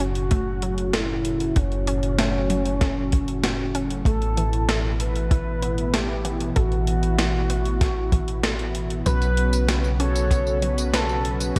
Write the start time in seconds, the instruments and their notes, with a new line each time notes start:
Already playing: analog synth bass F#1, analog synth pad A2 C#3 F#3 C#4 F#4
0.00 synth arpeggio sound C#4, analog synth lead F#4, closed hi-hat
0.15 closed hi-hat
0.31 synth arpeggio sound A3, kick, closed hi-hat
0.62 synth arpeggio sound F#3, closed hi-hat
0.78 closed hi-hat
0.93 analog synth lead E4, synth arpeggio sound A4, snare, closed hi-hat
1.25 closed hi-hat
1.40 closed hi-hat
1.56 analog synth bass F#1, analog synth lead C#4, synth arpeggio sound F#4, kick, closed hi-hat
1.72 closed hi-hat
1.87 synth arpeggio sound C#4, closed hi-hat
2.03 closed hi-hat
2.19 synth arpeggio sound A3, snare, closed hi-hat
2.50 synth arpeggio sound F#3, closed hi-hat
2.66 closed hi-hat
2.81 synth arpeggio sound A4, kick, snare, closed hi-hat
3.12 kick, closed hi-hat
3.28 closed hi-hat
3.44 synth arpeggio sound F#4, snare, closed hi-hat
3.75 synth arpeggio sound C#4, closed hi-hat
3.90 closed hi-hat
4.05 analog synth bass A1, analog synth pad B2 E3 B3 E4, synth arpeggio sound A3, analog synth lead A4, kick, closed hi-hat
4.22 closed hi-hat
4.37 synth arpeggio sound E3, closed hi-hat
4.53 closed hi-hat
4.69 synth arpeggio sound A4, snare, closed hi-hat
5.00 analog synth lead B4, closed hi-hat
5.16 closed hi-hat
5.31 synth arpeggio sound E4, kick, closed hi-hat
5.62 synth arpeggio sound B3, closed hi-hat
5.78 closed hi-hat
5.94 synth arpeggio sound A3, analog synth lead G4, snare, closed hi-hat
6.25 synth arpeggio sound E3, closed hi-hat
6.40 closed hi-hat
6.56 analog synth bass A1, analog synth lead F#4, synth arpeggio sound A4, kick, closed hi-hat
6.72 closed hi-hat
6.87 closed hi-hat
7.03 closed hi-hat
7.19 synth arpeggio sound E4, snare, closed hi-hat
7.50 synth arpeggio sound B3, closed hi-hat
7.65 closed hi-hat
7.81 synth arpeggio sound A3, kick, snare, closed hi-hat
8.12 synth arpeggio sound E3, kick, closed hi-hat
8.28 closed hi-hat
8.43 synth arpeggio sound A4, snare, closed hi-hat
8.59 closed hi-hat
8.75 closed hi-hat
8.90 closed hi-hat
9.06 analog synth bass B1, analog synth pad B2 C#3 F#3 C#4 F#4, analog polysynth B3 C#4 F#4 B4, synth arpeggio sound B4, analog synth lead B4, kick, closed hi-hat, tambourine
9.22 closed hi-hat, tambourine
9.37 closed hi-hat
9.53 closed hi-hat, tambourine
9.69 synth arpeggio sound F#4, snare, closed hi-hat, tambourine
9.84 tambourine
10.00 analog polysynth B3 C#4 F#4 A4, synth arpeggio sound C#4, analog synth lead C#5, closed hi-hat
10.16 closed hi-hat, tambourine
10.31 synth arpeggio sound B3, kick, closed hi-hat, tambourine
10.47 tambourine
10.62 synth arpeggio sound F#3, analog polysynth B3 C#4 F#4 B4, closed hi-hat
10.78 closed hi-hat, tambourine
10.94 analog synth lead A4, synth arpeggio sound B4, snare, closed hi-hat, tambourine
11.09 tambourine
11.25 closed hi-hat
11.40 closed hi-hat, tambourine